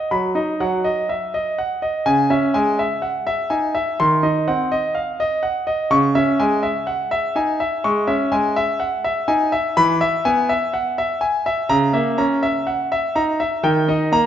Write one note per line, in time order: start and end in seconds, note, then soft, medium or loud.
0.00 0.12 D#5 medium
0.11 0.37 F#3 soft
0.11 0.37 B5 medium
0.35 0.61 D#4 soft
0.35 0.61 D#5 soft
0.60 0.86 F#3 medium
0.60 0.86 F#5 medium
0.84 1.10 D#5 medium
1.09 1.33 E5 soft
1.34 1.59 D#5 medium
1.58 1.83 F#5 medium
1.82 2.06 D#5 medium
2.06 2.29 C#3 medium
2.06 2.31 G#5 medium
2.30 2.55 C#4 medium
2.30 2.55 E5 medium
2.54 2.80 G#3 medium
2.54 2.79 G#5 medium
2.79 3.04 E5 medium
3.02 3.27 F#5 soft
3.27 3.52 E5 medium
3.50 3.75 D#4 soft
3.50 3.76 G#5 medium
3.75 3.99 E5 medium
4.00 4.23 D#3 medium
4.00 4.25 C6 medium
4.23 4.48 D#4 soft
4.23 4.48 D#5 soft
4.48 4.73 C4 medium
4.48 4.73 F#5 medium
4.72 4.97 D#5 medium
4.95 5.19 F5 medium
5.20 5.45 D#5 medium
5.43 5.68 F#5 medium
5.67 5.91 D#5 medium
5.91 6.14 C#3 medium
5.91 6.16 C#6 medium
6.15 6.40 C#4 medium
6.15 6.40 E5 medium
6.39 6.64 G#3 medium
6.39 6.64 G#5 medium
6.63 6.88 E5 medium
6.87 7.11 F#5 medium
7.11 7.36 E5 medium
7.35 7.59 D#4 soft
7.35 7.61 G#5 medium
7.60 7.85 E5 medium
7.84 8.09 G#3 medium
7.84 8.09 C#6 medium
8.07 8.33 C#4 medium
8.07 8.33 E5 medium
8.32 8.57 G#3 medium
8.32 8.57 G#5 medium
8.56 8.81 E5 medium
8.80 9.04 F#5 medium
9.04 9.30 E5 medium
9.28 9.52 D#4 medium
9.28 9.54 G#5 medium
9.52 9.77 E5 medium
9.77 10.01 E3 medium
9.77 10.02 B5 medium
10.01 10.27 E5 medium
10.25 10.51 B3 medium
10.25 10.51 G#5 medium
10.49 10.75 E5 medium
10.73 10.98 F#5 medium
10.98 11.23 E5 medium
11.21 11.47 G#5 medium
11.46 11.70 E5 medium
11.69 11.93 C#3 medium
11.69 11.95 A#5 medium
11.93 12.19 A#3 medium
11.93 12.19 E5 medium
12.18 12.44 C#4 medium
12.18 12.44 A#5 medium
12.43 12.68 E5 medium
12.67 12.91 F#5 medium
12.92 13.17 E5 medium
13.15 13.40 D#4 medium
13.15 13.41 A#5 medium
13.40 13.64 E5 medium
13.63 13.87 D#3 medium
13.63 13.89 G5 medium
13.88 14.13 D#4 medium
13.88 14.14 D#5 medium
14.12 14.26 A#3 medium
14.12 14.26 A#5 loud